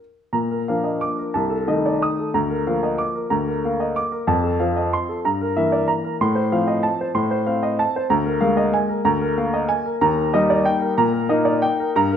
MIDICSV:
0, 0, Header, 1, 2, 480
1, 0, Start_track
1, 0, Key_signature, -2, "major"
1, 0, Tempo, 333333
1, 494, Time_signature, 3, 2, 24, 8
1, 4304, Tempo, 321716
1, 10064, Tempo, 312663
1, 12002, Key_signature, -3, "major"
1, 13904, Tempo, 324851
1, 18067, End_track
2, 0, Start_track
2, 0, Title_t, "Upright piano"
2, 0, Program_c, 0, 0
2, 0, Control_c, 0, 64, 127
2, 5, Control_c, 0, 64, 0
2, 470, Note_on_c, 0, 82, 55
2, 472, Note_on_c, 0, 46, 59
2, 733, Note_on_c, 0, 70, 50
2, 811, Control_c, 0, 64, 127
2, 861, Note_off_c, 0, 82, 0
2, 943, Note_off_c, 0, 46, 0
2, 982, Note_on_c, 0, 77, 53
2, 990, Note_on_c, 0, 53, 46
2, 994, Note_on_c, 0, 62, 50
2, 995, Note_on_c, 0, 58, 52
2, 1114, Note_off_c, 0, 70, 0
2, 1210, Note_on_c, 0, 75, 44
2, 1359, Note_off_c, 0, 77, 0
2, 1450, Note_off_c, 0, 75, 0
2, 1456, Note_on_c, 0, 86, 58
2, 1462, Control_c, 0, 64, 0
2, 1711, Note_on_c, 0, 70, 44
2, 1836, Note_off_c, 0, 86, 0
2, 1880, Note_off_c, 0, 53, 0
2, 1882, Note_off_c, 0, 62, 0
2, 1883, Note_off_c, 0, 58, 0
2, 1930, Note_on_c, 0, 81, 54
2, 1938, Note_off_c, 0, 70, 0
2, 1945, Note_on_c, 0, 36, 61
2, 2157, Note_on_c, 0, 69, 55
2, 2208, Control_c, 0, 64, 127
2, 2312, Note_off_c, 0, 81, 0
2, 2402, Note_off_c, 0, 36, 0
2, 2412, Note_on_c, 0, 51, 52
2, 2418, Note_on_c, 0, 75, 55
2, 2419, Note_on_c, 0, 57, 45
2, 2431, Note_on_c, 0, 63, 54
2, 2549, Note_off_c, 0, 69, 0
2, 2674, Note_on_c, 0, 74, 46
2, 2802, Note_off_c, 0, 75, 0
2, 2908, Note_off_c, 0, 74, 0
2, 2910, Control_c, 0, 64, 0
2, 2915, Note_on_c, 0, 87, 59
2, 3157, Note_on_c, 0, 69, 46
2, 3287, Note_off_c, 0, 87, 0
2, 3313, Note_off_c, 0, 51, 0
2, 3316, Note_off_c, 0, 57, 0
2, 3322, Note_off_c, 0, 63, 0
2, 3371, Note_on_c, 0, 38, 65
2, 3373, Note_on_c, 0, 82, 58
2, 3378, Note_off_c, 0, 69, 0
2, 3598, Note_on_c, 0, 70, 53
2, 3641, Control_c, 0, 64, 127
2, 3736, Note_off_c, 0, 82, 0
2, 3815, Note_off_c, 0, 38, 0
2, 3845, Note_on_c, 0, 77, 60
2, 3847, Note_on_c, 0, 53, 49
2, 3851, Note_on_c, 0, 58, 49
2, 3971, Note_off_c, 0, 70, 0
2, 4077, Note_on_c, 0, 75, 47
2, 4218, Note_off_c, 0, 77, 0
2, 4296, Note_on_c, 0, 86, 58
2, 4311, Note_off_c, 0, 75, 0
2, 4320, Control_c, 0, 64, 0
2, 4546, Note_on_c, 0, 70, 47
2, 4688, Note_off_c, 0, 86, 0
2, 4736, Note_off_c, 0, 53, 0
2, 4739, Note_off_c, 0, 58, 0
2, 4772, Note_on_c, 0, 82, 58
2, 4777, Note_on_c, 0, 38, 65
2, 4924, Note_off_c, 0, 70, 0
2, 5027, Note_on_c, 0, 70, 56
2, 5042, Control_c, 0, 64, 127
2, 5156, Note_off_c, 0, 82, 0
2, 5241, Note_off_c, 0, 38, 0
2, 5280, Note_on_c, 0, 58, 50
2, 5293, Note_on_c, 0, 77, 53
2, 5409, Note_off_c, 0, 70, 0
2, 5515, Note_on_c, 0, 75, 53
2, 5667, Note_off_c, 0, 77, 0
2, 5754, Note_off_c, 0, 75, 0
2, 5754, Note_on_c, 0, 86, 59
2, 5763, Control_c, 0, 64, 0
2, 5987, Note_on_c, 0, 70, 52
2, 6136, Note_off_c, 0, 86, 0
2, 6177, Note_off_c, 0, 58, 0
2, 6220, Note_on_c, 0, 41, 71
2, 6223, Note_on_c, 0, 81, 62
2, 6225, Note_off_c, 0, 70, 0
2, 6464, Note_on_c, 0, 69, 54
2, 6496, Control_c, 0, 64, 127
2, 6602, Note_off_c, 0, 81, 0
2, 6683, Note_off_c, 0, 41, 0
2, 6705, Note_on_c, 0, 77, 64
2, 6710, Note_on_c, 0, 53, 52
2, 6715, Note_on_c, 0, 60, 51
2, 6847, Note_off_c, 0, 69, 0
2, 6952, Note_on_c, 0, 75, 49
2, 7091, Note_off_c, 0, 77, 0
2, 7192, Note_off_c, 0, 75, 0
2, 7199, Control_c, 0, 64, 0
2, 7204, Note_on_c, 0, 84, 63
2, 7439, Note_on_c, 0, 69, 50
2, 7579, Note_off_c, 0, 84, 0
2, 7609, Note_off_c, 0, 53, 0
2, 7612, Note_off_c, 0, 60, 0
2, 7669, Note_off_c, 0, 69, 0
2, 7670, Note_on_c, 0, 43, 63
2, 7680, Note_on_c, 0, 82, 60
2, 7919, Note_on_c, 0, 70, 56
2, 7947, Control_c, 0, 64, 127
2, 8050, Note_off_c, 0, 82, 0
2, 8128, Note_off_c, 0, 43, 0
2, 8147, Note_on_c, 0, 58, 49
2, 8147, Note_on_c, 0, 76, 62
2, 8148, Note_on_c, 0, 52, 54
2, 8295, Note_off_c, 0, 70, 0
2, 8382, Note_on_c, 0, 74, 56
2, 8538, Note_off_c, 0, 76, 0
2, 8612, Note_on_c, 0, 82, 59
2, 8632, Note_off_c, 0, 74, 0
2, 8648, Control_c, 0, 64, 0
2, 8860, Note_on_c, 0, 70, 52
2, 9005, Note_off_c, 0, 82, 0
2, 9051, Note_off_c, 0, 52, 0
2, 9051, Note_off_c, 0, 58, 0
2, 9098, Note_off_c, 0, 70, 0
2, 9109, Note_on_c, 0, 45, 75
2, 9110, Note_on_c, 0, 84, 65
2, 9325, Note_on_c, 0, 72, 58
2, 9381, Control_c, 0, 64, 127
2, 9479, Note_off_c, 0, 84, 0
2, 9561, Note_off_c, 0, 45, 0
2, 9573, Note_on_c, 0, 53, 58
2, 9575, Note_on_c, 0, 77, 67
2, 9578, Note_on_c, 0, 60, 53
2, 9715, Note_off_c, 0, 72, 0
2, 9803, Note_on_c, 0, 75, 53
2, 9967, Note_off_c, 0, 77, 0
2, 10036, Note_on_c, 0, 81, 64
2, 10056, Note_off_c, 0, 75, 0
2, 10082, Control_c, 0, 64, 0
2, 10307, Note_on_c, 0, 72, 51
2, 10440, Note_off_c, 0, 81, 0
2, 10487, Note_off_c, 0, 53, 0
2, 10490, Note_off_c, 0, 60, 0
2, 10520, Note_on_c, 0, 45, 75
2, 10521, Note_on_c, 0, 84, 61
2, 10688, Note_off_c, 0, 72, 0
2, 10769, Note_on_c, 0, 72, 59
2, 10826, Control_c, 0, 64, 127
2, 10917, Note_off_c, 0, 84, 0
2, 11000, Note_off_c, 0, 45, 0
2, 11007, Note_on_c, 0, 77, 63
2, 11014, Note_on_c, 0, 60, 55
2, 11169, Note_off_c, 0, 72, 0
2, 11259, Note_on_c, 0, 75, 60
2, 11413, Note_off_c, 0, 77, 0
2, 11511, Note_on_c, 0, 81, 67
2, 11516, Note_off_c, 0, 75, 0
2, 11544, Control_c, 0, 64, 0
2, 11771, Note_on_c, 0, 72, 56
2, 11904, Note_off_c, 0, 81, 0
2, 11934, Note_off_c, 0, 60, 0
2, 11983, Note_on_c, 0, 38, 76
2, 11983, Note_on_c, 0, 82, 69
2, 12004, Note_off_c, 0, 72, 0
2, 12227, Note_on_c, 0, 70, 61
2, 12326, Control_c, 0, 64, 127
2, 12366, Note_off_c, 0, 82, 0
2, 12448, Note_off_c, 0, 38, 0
2, 12452, Note_on_c, 0, 77, 73
2, 12457, Note_on_c, 0, 58, 60
2, 12458, Note_on_c, 0, 56, 57
2, 12613, Note_off_c, 0, 70, 0
2, 12704, Note_on_c, 0, 75, 60
2, 12851, Note_off_c, 0, 77, 0
2, 12955, Note_off_c, 0, 75, 0
2, 12959, Note_on_c, 0, 80, 70
2, 12971, Control_c, 0, 64, 0
2, 13198, Note_on_c, 0, 70, 62
2, 13340, Note_off_c, 0, 80, 0
2, 13362, Note_off_c, 0, 58, 0
2, 13363, Note_off_c, 0, 56, 0
2, 13438, Note_on_c, 0, 38, 73
2, 13442, Note_on_c, 0, 82, 73
2, 13568, Note_off_c, 0, 70, 0
2, 13693, Note_on_c, 0, 70, 65
2, 13736, Control_c, 0, 64, 127
2, 13812, Note_off_c, 0, 82, 0
2, 13894, Note_off_c, 0, 38, 0
2, 13942, Note_on_c, 0, 77, 64
2, 13943, Note_on_c, 0, 58, 63
2, 14061, Note_off_c, 0, 70, 0
2, 14177, Note_on_c, 0, 75, 58
2, 14304, Note_off_c, 0, 77, 0
2, 14399, Note_on_c, 0, 80, 75
2, 14400, Note_off_c, 0, 75, 0
2, 14401, Control_c, 0, 64, 0
2, 14648, Note_on_c, 0, 70, 60
2, 14774, Note_off_c, 0, 80, 0
2, 14820, Note_off_c, 0, 58, 0
2, 14872, Note_off_c, 0, 70, 0
2, 14882, Note_on_c, 0, 39, 76
2, 14883, Note_on_c, 0, 82, 77
2, 15119, Note_on_c, 0, 70, 60
2, 15177, Control_c, 0, 64, 127
2, 15251, Note_off_c, 0, 82, 0
2, 15333, Note_off_c, 0, 39, 0
2, 15360, Note_on_c, 0, 75, 74
2, 15365, Note_on_c, 0, 58, 62
2, 15366, Note_on_c, 0, 55, 64
2, 15371, Note_on_c, 0, 63, 72
2, 15492, Note_off_c, 0, 70, 0
2, 15601, Note_on_c, 0, 74, 61
2, 15736, Note_off_c, 0, 75, 0
2, 15828, Note_on_c, 0, 79, 80
2, 15835, Note_off_c, 0, 74, 0
2, 15841, Control_c, 0, 64, 0
2, 16069, Note_on_c, 0, 70, 60
2, 16211, Note_off_c, 0, 79, 0
2, 16257, Note_off_c, 0, 55, 0
2, 16257, Note_off_c, 0, 58, 0
2, 16260, Note_off_c, 0, 63, 0
2, 16306, Note_on_c, 0, 82, 76
2, 16308, Note_on_c, 0, 46, 80
2, 16442, Note_off_c, 0, 70, 0
2, 16530, Note_on_c, 0, 70, 65
2, 16583, Control_c, 0, 64, 127
2, 16680, Note_off_c, 0, 82, 0
2, 16763, Note_off_c, 0, 46, 0
2, 16773, Note_on_c, 0, 58, 66
2, 16774, Note_on_c, 0, 75, 71
2, 16782, Note_on_c, 0, 63, 71
2, 16919, Note_off_c, 0, 70, 0
2, 17006, Note_on_c, 0, 74, 57
2, 17168, Note_off_c, 0, 75, 0
2, 17258, Note_on_c, 0, 79, 82
2, 17261, Note_off_c, 0, 74, 0
2, 17290, Control_c, 0, 64, 0
2, 17520, Note_on_c, 0, 70, 65
2, 17650, Note_off_c, 0, 79, 0
2, 17689, Note_off_c, 0, 58, 0
2, 17694, Note_off_c, 0, 63, 0
2, 17753, Note_off_c, 0, 70, 0
2, 17753, Note_on_c, 0, 43, 87
2, 17761, Note_on_c, 0, 82, 80
2, 17983, Control_c, 0, 64, 127
2, 17994, Note_on_c, 0, 70, 73
2, 18067, Note_off_c, 0, 43, 0
2, 18067, Note_off_c, 0, 70, 0
2, 18067, Note_off_c, 0, 82, 0
2, 18067, End_track
0, 0, End_of_file